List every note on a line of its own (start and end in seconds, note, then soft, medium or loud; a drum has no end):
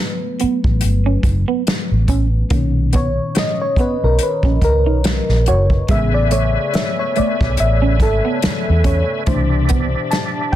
0.00 0.36 F#3 medium
0.00 0.36 A3 soft
0.00 0.36 B3 medium
0.00 0.78 B4 medium
0.40 0.58 B3 medium
0.40 muted fingered electric bass stroke soft
0.40 closed hi-hat medium
0.64 0.79 A1 medium
0.64 kick medium
0.81 1.16 G1 medium
0.81 closed hi-hat medium
1.06 1.20 C#4 medium
1.23 1.43 F#1 medium
1.23 muted clean electric guitar stroke soft
1.23 kick loud
1.23 closed hi-hat medium
1.48 1.62 B3 medium
1.67 snare loud
1.67 closed hi-hat medium
1.91 2.06 A1 medium
2.08 2.42 A1 medium
2.08 2.26 C#4 medium
2.08 kick medium
2.08 closed hi-hat medium
2.50 3.18 B1 loud
2.50 5.85 A#2 soft
2.50 5.85 D#3 medium
2.50 2.68 A#3 medium
2.50 5.85 C#4 medium
2.50 kick loud
2.50 closed hi-hat medium
2.93 3.11 B3 medium
2.93 3.34 C#5 medium
2.93 kick medium
2.93 closed hi-hat medium
3.35 3.61 D#5 medium
3.35 snare loud
3.35 closed hi-hat medium
3.62 3.79 C#5 medium
3.76 3.96 B3 medium
3.76 muted fingered electric bass stroke soft
3.76 kick medium
3.76 closed hi-hat medium
3.81 4.03 B4 medium
4.03 4.17 B1 medium
4.03 4.22 A#4 medium
4.19 closed hi-hat medium
4.23 4.61 B4 medium
4.43 4.59 A#1 medium
4.43 4.58 C#4 medium
4.43 kick medium
4.61 4.87 C#2 medium
4.61 5.50 A#4 medium
4.61 muted clean electric guitar stroke soft
4.61 kick medium
4.61 closed hi-hat medium
4.86 5.20 B1 medium
4.86 5.00 D#4 medium
5.04 snare loud
5.04 closed hi-hat medium
5.29 5.50 A#1 medium
5.29 snare soft
5.46 5.81 F#1 medium
5.46 5.65 F#4 medium
5.46 5.91 C#5 medium
5.46 closed hi-hat medium
5.70 kick medium
5.88 6.56 A1 loud
5.88 9.24 C#3 medium
5.88 6.07 G#3 medium
5.88 9.24 A3 medium
5.88 9.24 B3 soft
5.88 9.24 G#4 soft
5.88 9.23 B4 medium
5.88 9.24 E5 medium
5.88 6.14 E5 medium
5.88 9.24 G#5 medium
5.88 kick loud
5.88 closed hi-hat medium
6.14 6.22 D5 medium
6.31 6.49 A3 medium
6.31 6.75 C#5 medium
6.31 closed hi-hat medium
6.74 6.98 E5 medium
6.74 snare loud
6.74 closed hi-hat medium
6.99 7.17 C#5 medium
7.16 7.34 A3 medium
7.16 7.56 D5 medium
7.16 muted fingered electric bass stroke soft
7.16 closed hi-hat medium
7.41 7.55 B1 medium
7.41 kick loud
7.41 snare soft
7.57 8.03 A1 medium
7.57 8.02 E5 medium
7.57 closed hi-hat medium
7.82 7.96 C#4 medium
8.00 8.19 G#1 medium
8.00 8.88 A4 medium
8.00 muted clean electric guitar stroke soft
8.00 kick medium
8.00 closed hi-hat medium
8.25 8.38 B3 medium
8.42 muted fingered electric bass stroke soft
8.42 snare loud
8.42 closed hi-hat medium
8.69 9.01 E2 medium
8.84 9.02 C#4 medium
8.84 9.29 C#5 medium
8.84 kick loud
8.84 closed hi-hat medium
9.26 9.94 C2 loud
9.26 10.56 B2 soft
9.26 10.56 E3 soft
9.26 9.45 A3 medium
9.26 10.56 D4 medium
9.26 10.56 G4 medium
9.26 9.67 C5 medium
9.26 10.56 D5 medium
9.26 10.56 E5 medium
9.26 kick loud
9.26 closed hi-hat medium
9.69 9.87 B3 medium
9.69 kick medium
9.69 closed hi-hat medium
10.11 10.50 A5 medium
10.11 snare loud
10.11 closed hi-hat medium
10.52 10.56 G5 loud